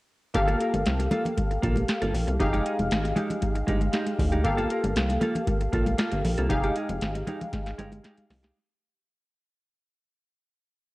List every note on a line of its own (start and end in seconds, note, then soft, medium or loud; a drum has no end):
0.34 0.56 G1 loud
0.34 2.35 A#3 medium
0.34 2.36 G4 medium
0.34 2.36 A4 medium
0.34 2.36 F5 medium
0.34 muted clean electric guitar stroke soft
0.34 kick loud
0.34 closed hi-hat medium
0.34 muted conga soft
0.48 0.59 A#3 medium
0.48 0.60 F4 medium
0.48 0.61 A4 medium
0.48 closed hi-hat soft
0.48 muted conga soft
0.60 0.76 A#3 medium
0.60 0.74 F4 medium
0.60 0.73 A#4 medium
0.60 closed hi-hat medium
0.74 0.84 G1 medium
0.74 muted clean electric guitar stroke soft
0.74 closed hi-hat soft
0.74 high conga medium
0.86 1.08 C2 loud
0.86 snare loud
0.86 closed hi-hat medium
0.86 muted conga soft
0.99 muted clean electric guitar stroke medium
0.99 closed hi-hat medium
0.99 muted conga soft
1.11 1.31 A#3 medium
1.11 1.25 F4 medium
1.11 1.24 A4 medium
1.11 closed hi-hat medium
1.11 high conga medium
1.11 low conga medium
1.25 muted clean electric guitar stroke soft
1.25 closed hi-hat soft
1.25 low conga medium
1.37 muted clean electric guitar stroke soft
1.37 kick loud
1.37 closed hi-hat medium
1.37 muted conga soft
1.37 high conga medium
1.51 muted clean electric guitar stroke soft
1.51 closed hi-hat soft
1.62 1.85 A#1 medium
1.62 1.82 A#3 medium
1.62 1.77 F4 medium
1.62 1.75 A4 medium
1.62 kick medium
1.62 closed hi-hat medium
1.76 muted clean electric guitar stroke soft
1.76 closed hi-hat soft
1.76 high conga medium
1.88 muted clean electric guitar stroke soft
1.88 snare loud
1.88 closed hi-hat medium
2.02 2.12 G1 medium
2.02 2.13 A#3 medium
2.02 2.13 F4 medium
2.02 2.14 A4 medium
2.02 closed hi-hat medium
2.02 muted conga soft
2.14 2.25 A#1 medium
2.14 muted clean electric guitar stroke soft
2.14 open hi-hat medium
2.14 low conga medium
2.27 2.38 C2 loud
2.27 muted clean electric guitar stroke medium
2.27 closed hi-hat soft
2.39 2.61 F1 loud
2.39 4.41 D#4 medium
2.39 4.41 G4 medium
2.39 4.41 G#4 medium
2.39 4.42 F5 medium
2.39 muted clean electric guitar stroke soft
2.39 kick loud
2.39 closed hi-hat medium
2.53 2.64 G#3 medium
2.53 2.65 D#4 medium
2.53 2.66 G4 medium
2.53 closed hi-hat soft
2.53 muted conga soft
2.65 2.81 G#3 medium
2.65 2.78 D#4 medium
2.65 2.78 G#4 medium
2.65 closed hi-hat medium
2.78 2.89 F1 medium
2.78 muted clean electric guitar stroke soft
2.78 closed hi-hat medium
2.78 high conga medium
2.91 3.13 G#1 loud
2.91 snare loud
2.91 closed hi-hat medium
3.04 muted clean electric guitar stroke soft
3.04 closed hi-hat medium
3.16 3.36 G#3 medium
3.16 3.30 D#4 medium
3.16 3.28 G4 medium
3.16 closed hi-hat medium
3.16 high conga medium
3.16 low conga medium
3.30 muted clean electric guitar stroke soft
3.30 closed hi-hat soft
3.30 low conga medium
3.42 muted clean electric guitar stroke soft
3.42 kick loud
3.42 closed hi-hat medium
3.42 high conga medium
3.55 muted clean electric guitar stroke medium
3.55 closed hi-hat medium
3.55 muted conga soft
3.67 3.90 G1 medium
3.67 3.87 G#3 medium
3.67 3.81 D#4 medium
3.67 3.80 G4 medium
3.67 kick medium
3.67 closed hi-hat medium
3.81 muted clean electric guitar stroke soft
3.81 closed hi-hat soft
3.81 high conga medium
3.93 4.12 G#3 medium
3.93 4.07 D#4 medium
3.93 4.05 G4 medium
3.93 snare loud
3.93 closed hi-hat loud
4.07 muted clean electric guitar stroke soft
4.07 closed hi-hat soft
4.07 muted conga soft
4.19 4.46 D2 medium
4.19 muted clean electric guitar stroke soft
4.19 kick medium
4.19 open hi-hat medium
4.19 low conga medium
4.32 4.44 G#3 medium
4.32 4.44 D#4 medium
4.32 4.45 G4 medium
4.32 closed hi-hat medium
4.44 4.67 G1 loud
4.44 6.46 A#3 medium
4.44 6.46 G4 medium
4.44 6.46 A4 medium
4.44 6.47 F5 medium
4.44 muted clean electric guitar stroke soft
4.44 kick loud
4.44 closed hi-hat medium
4.44 muted conga soft
4.58 4.69 A#3 medium
4.58 4.70 F4 medium
4.58 4.71 A4 medium
4.58 closed hi-hat medium
4.58 muted conga soft
4.70 4.86 A#3 medium
4.70 4.84 F4 medium
4.70 4.83 A#4 medium
4.70 closed hi-hat medium
4.84 4.94 G1 medium
4.84 muted clean electric guitar stroke soft
4.84 closed hi-hat soft
4.84 high conga medium
4.96 5.18 C2 loud
4.96 snare loud
4.96 closed hi-hat medium
4.96 muted conga soft
5.09 muted clean electric guitar stroke soft
5.09 closed hi-hat medium
5.09 muted conga soft
5.21 5.41 A#3 medium
5.21 5.35 F4 medium
5.21 5.34 A4 medium
5.21 closed hi-hat medium
5.21 high conga medium
5.21 low conga medium
5.35 muted clean electric guitar stroke soft
5.35 closed hi-hat soft
5.35 low conga medium
5.47 muted clean electric guitar stroke soft
5.47 kick loud
5.47 closed hi-hat medium
5.47 muted conga soft
5.47 high conga medium
5.61 muted clean electric guitar stroke soft
5.61 closed hi-hat medium
5.61 muted conga soft
5.73 5.95 A#1 medium
5.73 5.92 A#3 medium
5.73 5.86 F4 medium
5.73 5.85 A4 medium
5.73 kick medium
5.73 closed hi-hat medium
5.86 muted clean electric guitar stroke soft
5.86 closed hi-hat soft
5.86 high conga medium
5.98 6.18 A#3 medium
5.98 6.12 F4 medium
5.98 6.11 A4 medium
5.98 snare loud
5.98 closed hi-hat medium
5.98 muted conga soft
6.12 6.23 G1 medium
6.12 muted clean electric guitar stroke medium
6.12 closed hi-hat medium
6.24 6.36 A#1 medium
6.24 muted clean electric guitar stroke soft
6.24 open hi-hat medium
6.24 low conga medium
6.38 6.48 C2 medium
6.38 6.49 A#3 soft
6.38 6.50 F4 medium
6.38 6.51 A4 medium
6.38 closed hi-hat soft
6.49 6.72 F1 loud
6.49 8.51 D#4 medium
6.49 8.51 G4 medium
6.49 8.51 G#4 medium
6.49 8.51 F5 medium
6.49 muted clean electric guitar stroke soft
6.49 kick loud
6.49 closed hi-hat medium
6.49 muted conga soft
6.63 6.75 G#3 medium
6.63 6.75 D#4 medium
6.63 6.77 G4 medium
6.63 closed hi-hat soft
6.76 6.91 G#3 medium
6.76 6.89 D#4 medium
6.76 6.89 G#4 medium
6.76 closed hi-hat medium
6.89 6.99 F1 medium
6.89 muted clean electric guitar stroke soft
6.89 closed hi-hat soft
6.89 high conga medium
7.01 7.23 G#1 loud
7.01 snare loud
7.01 closed hi-hat medium
7.01 muted conga soft
7.15 muted clean electric guitar stroke soft
7.15 closed hi-hat medium
7.15 muted conga soft
7.27 7.46 G#3 medium
7.27 7.41 D#4 medium
7.27 7.39 G4 medium
7.27 closed hi-hat medium
7.27 high conga medium
7.27 low conga medium
7.41 muted clean electric guitar stroke soft
7.41 closed hi-hat soft
7.41 low conga medium
7.53 muted clean electric guitar stroke soft
7.53 kick loud
7.53 snare medium
7.53 closed hi-hat medium
7.53 muted conga soft
7.53 high conga medium
7.66 muted clean electric guitar stroke soft
7.66 snare medium
7.66 closed hi-hat soft
7.78 8.00 G1 loud
7.78 7.97 G#3 medium
7.78 7.92 D#4 medium
7.78 7.91 G4 medium
7.78 closed hi-hat medium
7.92 muted clean electric guitar stroke soft
7.92 closed hi-hat soft
7.92 high conga medium
8.03 8.23 G#3 medium
8.03 8.17 D#4 medium
8.03 8.16 G4 medium
8.03 snare medium
8.03 closed hi-hat medium
8.03 muted conga soft
8.17 muted clean electric guitar stroke soft
8.17 closed hi-hat medium
8.17 high conga medium
8.29 8.51 C2 medium
8.29 muted clean electric guitar stroke soft
8.29 snare medium
8.29 open hi-hat medium
8.29 low conga medium
8.43 8.58 G#3 soft
8.43 8.57 D#4 medium
8.43 8.57 G4 medium
8.43 snare medium